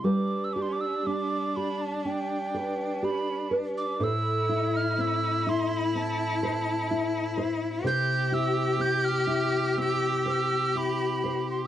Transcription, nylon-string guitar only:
X:1
M:4/4
L:1/8
Q:1/4=62
K:Gmix
V:1 name="Nylon-string guitar"
[G,B] G D G D B G B | [A,,c] E C E C c E c | [C,c] E C E C c E c |]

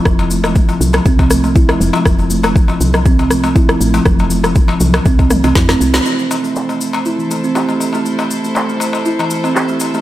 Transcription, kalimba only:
X:1
M:4/4
L:1/16
Q:"Swing 16ths" 1/4=120
K:Am
V:1 name="Kalimba"
F, z2 F, z F, z2 C C, F, A, E F, z F, | F, z2 F, z F, z2 C C, F, A, E F, z F, | z3 F, z F, z2 C C, E, C E C z C | A, z2 A, z A, z2 E E, A, C G A, z A, |
A, z2 A, z A, z2 E E, A, C G A, z A, |]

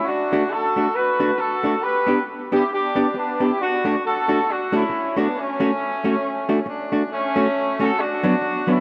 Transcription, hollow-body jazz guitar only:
X:1
M:4/4
L:1/8
Q:"Swing" 1/4=136
K:D
V:1 name="Hollow-body jazz guitar"
z [A,DF] z [A,DF] z [A,DF] z [A,DF] | z [B,DG] z [B,DG] z [B,DG] z [B,DG] | z [A,DF] z [A,DF] z [A,DF] z [A,DF] | z [A,CF] z [A,CF] z [A,DF] z [A,DF] |
z [A,CF] z [A,CF] z [F,B,D] z [F,B,D] |]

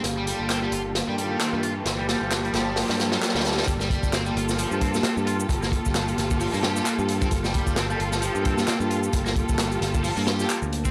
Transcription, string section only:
X:1
M:4/4
L:1/16
Q:"Swing 16ths" 1/4=132
K:Gm
V:1 name="String section"
z2 [B,FGA]6 z2 [B,FGA]6 | z2 [B,FGA]2 z2 [B,FGA]2 [B,FGA]2 [B,FGA]2 [B,FGA]2 [B,FGA]2 | z2 [B,FGA]12- [B,FGA]2- | [B,FGA]2 [B,FGA]12- [B,FGA]2- |
[B,FGA]2 [B,FGA]12- [B,FGA]2- | [B,FGA]2 [B,FGA]8- [B,FGA] [B,FGA] z4 |]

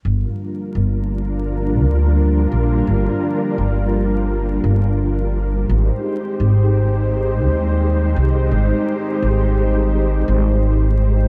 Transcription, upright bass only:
X:1
M:4/4
L:1/8
Q:"Swing 16ths" 1/4=85
K:Gphr
V:1 name="Upright bass" clef=bass
G,,, z G,,,3 D,,2 B,,, | G,,, z G,,,3 G,,,3 | A,,, z A,,,3 E,,2 C,, | A,,, z A,,,3 A,,,3 |]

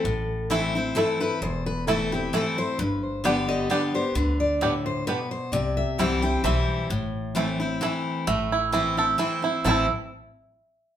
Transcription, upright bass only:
X:1
M:3/4
L:1/8
Q:"Swing" 1/4=131
K:Am
V:1 name="Upright bass" clef=bass
A,,,6 | E,,,6 | G,,,6 | D,,6 |
C,,2 C,,2 B,,,2 | A,,,6 | A,,,6 | A,,, z4 z |]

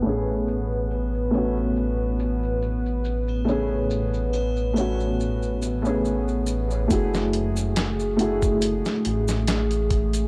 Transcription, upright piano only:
X:1
M:4/4
L:1/16
Q:"Swing 16ths" 1/4=70
K:F#m
V:1 name="Upright piano"
[A,B,CG]6 [A,B,CF]8- [A,B,CF]2 | [A,B,CG]6 [A,B,CF]4- [A,B,CF] [A,B,CG]4- [A,B,CG] | [A,EFG]6 [A,EFG]8- [A,EFG]2 |]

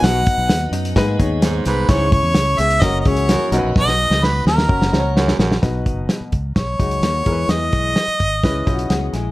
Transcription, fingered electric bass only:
X:1
M:4/4
L:1/16
Q:1/4=129
K:B
V:1 name="Fingered electric bass" clef=bass
B,,,2 z B,,, D,,2 F,,2 G,,2 D,,4 =C,,2 | C,,3 E,, C,,2 C,,2 F,,,2 C,,3 z B,,, A,,, | B,,,3 C,,3 D,,2 F,,,2 C,,4 A,,,2 | B,,,2 F,,,2 z2 C,,2 B,,,2 C,,2 D,,2 E,,2 |
E,,2 B,,,2 z2 G,,,2 C,,2 B,,,2 C,,2 A,,,2 |]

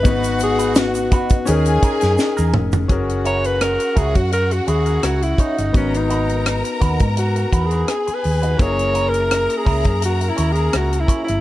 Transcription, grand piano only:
X:1
M:4/4
L:1/8
Q:"Swing 16ths" 1/4=84
K:F#mix
V:1 name="Grand piano"
[B,DFB]4 [CDGA]4 | [CFGA]8 | [B,DFB]8 | [A,CEG]8 |]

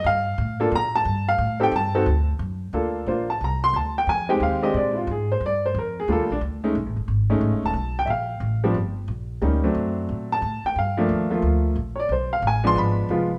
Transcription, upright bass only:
X:1
M:4/4
L:1/8
Q:"Swing" 1/4=179
K:Bb
V:1 name="Upright bass" clef=bass
G,,2 A,,2 B,,2 G,,2 | A,,2 G,,2 D,,2 ^F,,2 | D,,2 B,,,2 C,,2 D,,2 | F,,2 E,,2 B,,2 _A,,2 |
G,,2 F,,2 (3E,, D,, B,,, D,,2 | (3=B,,, A,,, ^F,,, ^G,,,2 (3A,,, F,,, ^D,,, B,,,2 | B,,,2 A,,,2 G,,,2 B,,,2 | D,,2 ^F,,2 B,,2 A,, z |
G,,2 E,,2 D,,2 B,,,2 | =B,,,2 A,,,2 _A,,,2 F,,,2 |]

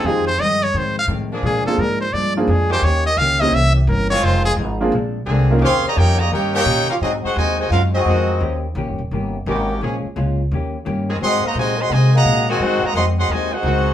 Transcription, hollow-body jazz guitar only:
X:1
M:4/4
L:1/8
Q:"Swing" 1/4=172
K:Bbdor
V:1 name="Hollow-body jazz guitar"
[F,,E,A,C] z [F,,E,A,C] z [F,,E,A,C] z [F,,E,A,C] z | [B,,F,A,=D] z [B,,F,A,D] z [B,,F,A,D] z [B,,F,A,D] z | [E,B,DG] z [E,B,DG] z [C,=E,B,D] z [C,E,B,D] z | [F,CEA] z [F,CEA] z [B,,A,C=D] z [B,,A,CD] z |
[K:Ablyd] [E,B,_DG] z [E,B,DG] z [E,B,DG] z [E,B,DG] z | [A,,_G,CE] z [A,,G,CE] z [A,,G,CE] z [A,,G,CE] z | [E,B,_DG] z [E,B,DG] z [E,B,DG] z [E,B,DG] z | [B,,A,_DF] z [B,,A,DF] z [E,B,DG] z [E,B,DG] z |
[A,,_G,CE] z [A,,G,CE] z [A,,G,CE] z [A,,G,CE] z | [A,,_G,CE] z [A,,G,CE] z [A,,G,CE] z [A,,G,CE] z |]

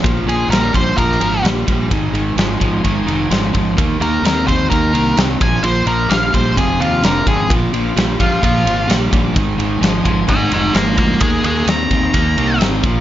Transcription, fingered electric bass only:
X:1
M:4/4
L:1/8
Q:1/4=129
K:Bbmix
V:1 name="Fingered electric bass" clef=bass
B,,, B,,, B,,, B,,, B,,, A,,, B,,, B,,, | A,,, A,,, A,,, A,,, A,,, F,,, A,,, A,,, | E,, E,, E,, E,, E,, C,, C,, B,,, | B,,, B,,, B,,, B,,, F,,, E,, F,,, A,,, |
B,,, B,,, B,,, B,,, B,,, A,,, B,,, B,,, | A,,, A,,, A,,, A,,, A,,, F,,, A,,, D,, | E,, E,, E,, E,, E,, C,, A,,, B,,, |]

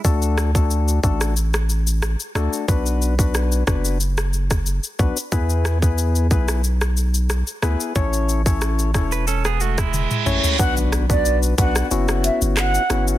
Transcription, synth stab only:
X:1
M:4/4
L:1/16
Q:1/4=91
K:A
V:1 name="Synth stab"
[A,DFA]3 [A,DFA]3 [A,DFA]2 z6 [A,DFA]2 | [B,DFB]3 [B,DFB]3 [B,DFB]2 z6 [B,DFB] z | [B,EGB]3 [B,EGB]3 [B,EGB]2 z6 [B,EGB]2 | [CEAc]3 [CEAc]3 [CEAc]2 z6 [A,CEc]2 |
[K:Bm] [B,DFB]3 [B,DFB]3 [B,DFB]2 [B,CEF]6 [B,CEF]2 |]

